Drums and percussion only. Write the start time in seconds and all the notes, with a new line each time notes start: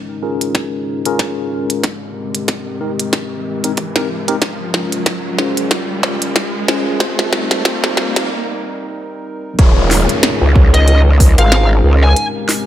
0.41 closed hi-hat
0.55 kick, snare, closed hi-hat
1.06 closed hi-hat
1.19 kick, snare, closed hi-hat
1.70 closed hi-hat
1.84 kick, snare, closed hi-hat
2.35 closed hi-hat
2.48 kick, snare, closed hi-hat
3.00 closed hi-hat
3.13 kick, snare, closed hi-hat
3.64 closed hi-hat
3.77 kick, closed hi-hat
3.96 snare
4.28 closed hi-hat
4.42 kick, snare, closed hi-hat
4.74 snare
4.92 closed hi-hat
5.06 kick, snare, closed hi-hat
5.39 snare
5.57 closed hi-hat
5.71 kick, snare, closed hi-hat
6.03 snare
6.22 closed hi-hat
6.36 kick, snare, closed hi-hat
6.68 snare
7.00 kick, snare, closed hi-hat
7.19 snare
7.33 snare
7.51 snare, closed hi-hat
7.65 kick, snare, closed hi-hat
7.84 snare
7.97 snare
8.16 snare, closed hi-hat
9.59 kick, closed hi-hat
9.91 snare, open hi-hat
10.09 closed hi-hat
10.23 snare, closed hi-hat
10.56 kick
10.74 closed hi-hat
10.88 closed hi-hat
11.20 kick, open hi-hat
11.38 closed hi-hat
11.52 snare, closed hi-hat
12.16 closed hi-hat
12.49 snare, open hi-hat